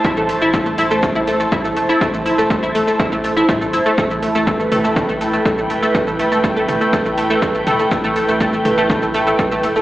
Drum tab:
HH |--o---o---o---o-|--o---o---o---o-|--o---o---o---o-|--o---o---o---o-|
SH |xxxxxxxxxxxxxxxx|xxxxxxxxxxxxxxxx|xxxxxxxxxxxxxxxx|xxxxxxxxxxxxxxxx|
T2 |----------------|----------------|------o-o-------|------o-------o-|
BD |o---o---o---o---|o---o---o---o---|o---o---o---o---|o---o---o---o---|

HH |--o---o---o---o-|
SH |xxxxxxxxxxxxxxxx|
T2 |------o-o-------|
BD |o---o---o---o---|